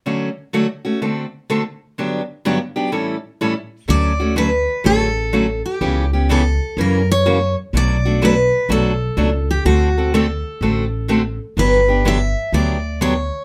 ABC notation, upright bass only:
X:1
M:4/4
L:1/8
Q:"Swing" 1/4=125
K:D
V:1 name="Upright bass" clef=bass
z8 | z8 | D,,4 A,,,4 | C,,4 F,,4 |
B,,,4 B,,,2 C,,2 | D,,4 A,,,4 | G,,,4 D,,4 |]